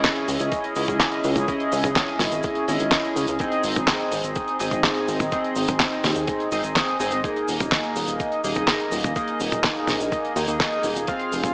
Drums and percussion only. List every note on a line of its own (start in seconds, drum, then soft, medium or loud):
0.04 kick loud
0.04 snare loud
0.04 clap loud
0.04 closed hi-hat medium
0.04 cabasa soft
0.16 closed hi-hat medium
0.28 open hi-hat loud
0.28 cabasa medium
0.40 closed hi-hat medium
0.40 cabasa medium
0.52 kick loud
0.52 closed hi-hat medium
0.52 cabasa soft
0.64 closed hi-hat medium
0.75 open hi-hat loud
0.75 cabasa medium
0.88 kick medium
0.88 closed hi-hat medium
0.88 high tom medium
0.88 cabasa medium
1.00 kick loud
1.00 snare loud
1.00 clap loud
1.00 closed hi-hat medium
1.00 cabasa soft
1.12 closed hi-hat medium
1.24 open hi-hat loud
1.24 cabasa medium
1.36 closed hi-hat medium
1.36 high tom medium
1.36 cabasa medium
1.48 kick loud
1.48 closed hi-hat medium
1.48 cabasa medium
1.60 closed hi-hat medium
1.72 open hi-hat loud
1.72 cabasa medium
1.84 closed hi-hat medium
1.84 high tom medium
1.84 cabasa medium
1.96 kick loud
1.96 snare loud
1.96 clap loud
1.96 closed hi-hat loud
1.96 cabasa soft
2.08 closed hi-hat soft
2.19 snare medium
2.19 open hi-hat loud
2.19 high tom medium
2.19 cabasa medium
2.32 closed hi-hat medium
2.32 cabasa medium
2.43 kick loud
2.43 closed hi-hat medium
2.43 cabasa soft
2.55 closed hi-hat medium
2.68 open hi-hat loud
2.68 cabasa medium
2.79 closed hi-hat medium
2.79 cabasa medium
2.92 kick loud
2.92 snare loud
2.92 clap loud
2.92 closed hi-hat medium
2.92 cabasa soft
3.05 closed hi-hat medium
3.16 open hi-hat loud
3.16 cabasa medium
3.27 closed hi-hat medium
3.27 cabasa medium
3.39 kick loud
3.39 closed hi-hat medium
3.39 cabasa medium
3.52 closed hi-hat medium
3.64 open hi-hat loud
3.64 cabasa medium
3.75 closed hi-hat medium
3.75 high tom medium
3.75 cabasa medium
3.88 kick loud
3.88 snare loud
3.88 clap loud
3.88 closed hi-hat medium
3.88 cabasa soft
4.00 closed hi-hat medium
4.12 open hi-hat loud
4.12 cabasa medium
4.24 closed hi-hat medium
4.24 cabasa medium
4.36 kick loud
4.36 closed hi-hat medium
4.36 cabasa soft
4.48 closed hi-hat medium
4.59 open hi-hat loud
4.59 cabasa medium
4.71 kick medium
4.71 closed hi-hat medium
4.71 high tom medium
4.71 cabasa medium
4.84 kick loud
4.84 snare loud
4.84 clap loud
4.84 closed hi-hat medium
4.84 cabasa soft
4.96 closed hi-hat soft
5.08 open hi-hat loud
5.08 cabasa medium
5.20 closed hi-hat medium
5.20 high tom medium
5.20 cabasa medium
5.32 kick loud
5.32 closed hi-hat medium
5.32 cabasa soft
5.44 closed hi-hat medium
5.56 open hi-hat loud
5.56 cabasa medium
5.68 closed hi-hat medium
5.68 high tom medium
5.68 cabasa medium
5.80 kick loud
5.80 snare loud
5.80 clap loud
5.80 closed hi-hat medium
5.80 cabasa medium
5.92 closed hi-hat medium
6.04 snare medium
6.04 open hi-hat loud
6.04 high tom medium
6.04 cabasa medium
6.16 closed hi-hat medium
6.16 cabasa medium
6.27 kick loud
6.27 closed hi-hat medium
6.27 cabasa medium
6.40 closed hi-hat medium
6.52 open hi-hat loud
6.52 cabasa medium
6.64 closed hi-hat medium
6.64 cabasa medium
6.76 kick loud
6.76 snare loud
6.76 clap loud
6.76 closed hi-hat medium
6.76 cabasa soft
6.88 closed hi-hat medium
7.00 open hi-hat loud
7.00 cabasa medium
7.11 closed hi-hat medium
7.11 cabasa medium
7.24 kick loud
7.24 closed hi-hat medium
7.24 cabasa soft
7.36 closed hi-hat medium
7.48 open hi-hat loud
7.48 cabasa medium
7.60 closed hi-hat medium
7.60 high tom medium
7.60 cabasa medium
7.71 kick loud
7.71 snare loud
7.71 clap loud
7.71 closed hi-hat medium
7.71 cabasa medium
7.83 closed hi-hat soft
7.96 open hi-hat loud
7.96 cabasa medium
8.08 closed hi-hat medium
8.08 cabasa medium
8.20 kick loud
8.20 closed hi-hat medium
8.20 cabasa medium
8.32 closed hi-hat soft
8.44 open hi-hat loud
8.44 cabasa medium
8.55 kick medium
8.55 closed hi-hat medium
8.55 high tom medium
8.55 cabasa medium
8.68 kick loud
8.68 snare loud
8.68 clap medium
8.68 closed hi-hat medium
8.68 cabasa medium
8.80 closed hi-hat medium
8.92 open hi-hat loud
8.92 cabasa medium
9.04 closed hi-hat medium
9.04 high tom medium
9.04 cabasa medium
9.16 kick loud
9.16 closed hi-hat medium
9.16 cabasa soft
9.28 closed hi-hat medium
9.40 open hi-hat loud
9.40 cabasa medium
9.52 closed hi-hat medium
9.52 high tom medium
9.52 cabasa medium
9.64 kick loud
9.64 snare loud
9.64 clap medium
9.64 closed hi-hat medium
9.64 cabasa soft
9.76 closed hi-hat soft
9.87 snare medium
9.87 open hi-hat loud
9.87 high tom medium
9.87 cabasa medium
10.00 closed hi-hat medium
10.00 cabasa medium
10.12 kick loud
10.12 closed hi-hat medium
10.12 cabasa soft
10.25 closed hi-hat medium
10.36 open hi-hat loud
10.36 cabasa medium
10.48 closed hi-hat medium
10.48 cabasa medium
10.60 kick loud
10.60 snare loud
10.60 clap medium
10.60 closed hi-hat medium
10.60 cabasa soft
10.72 closed hi-hat medium
10.83 open hi-hat loud
10.83 cabasa medium
10.96 closed hi-hat medium
10.96 cabasa medium
11.07 kick loud
11.07 closed hi-hat medium
11.07 cabasa soft
11.19 closed hi-hat medium
11.32 open hi-hat loud
11.32 cabasa medium
11.44 closed hi-hat medium
11.44 high tom medium
11.44 cabasa medium